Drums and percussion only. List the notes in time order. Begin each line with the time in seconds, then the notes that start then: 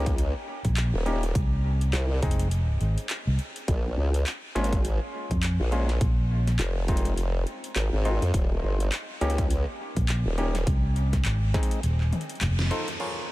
0.06 kick, closed hi-hat
0.18 closed hi-hat
0.65 kick, closed hi-hat
0.77 clap, closed hi-hat
1.06 closed hi-hat
1.23 closed hi-hat
1.35 kick, closed hi-hat
1.81 closed hi-hat
1.94 clap, closed hi-hat
2.22 kick, closed hi-hat
2.31 closed hi-hat
2.39 closed hi-hat
2.51 closed hi-hat
2.81 closed hi-hat
2.98 closed hi-hat
3.10 clap, closed hi-hat
3.39 closed hi-hat
3.56 closed hi-hat
3.68 kick, closed hi-hat
4.14 closed hi-hat
4.27 clap, closed hi-hat
4.56 snare, closed hi-hat
4.64 closed hi-hat
4.73 kick, closed hi-hat
4.85 closed hi-hat
5.31 kick, closed hi-hat
5.43 clap, closed hi-hat
5.72 closed hi-hat
5.89 snare, closed hi-hat
6.01 kick, closed hi-hat
6.47 snare, closed hi-hat
6.59 clap, closed hi-hat
6.88 kick, closed hi-hat
6.97 closed hi-hat
7.05 closed hi-hat
7.18 closed hi-hat
7.47 closed hi-hat
7.64 closed hi-hat
7.76 clap, closed hi-hat
8.05 closed hi-hat
8.22 closed hi-hat
8.34 kick, closed hi-hat
8.80 closed hi-hat
8.92 clap, closed hi-hat
9.21 closed hi-hat
9.30 closed hi-hat
9.38 kick, closed hi-hat
9.50 closed hi-hat
9.97 kick, closed hi-hat
10.09 clap, closed hi-hat
10.38 closed hi-hat
10.55 snare, closed hi-hat
10.67 kick, closed hi-hat
10.96 closed hi-hat
11.13 kick, snare, closed hi-hat
11.25 clap, closed hi-hat
11.54 kick, snare, closed hi-hat
11.63 closed hi-hat
11.71 closed hi-hat
11.83 closed hi-hat
12.01 clap
12.13 closed hi-hat, high tom
12.21 closed hi-hat
12.30 closed hi-hat
12.35 closed hi-hat
12.41 clap, closed hi-hat, mid tom
12.59 snare
12.71 closed hi-hat
12.88 closed hi-hat
13.00 crash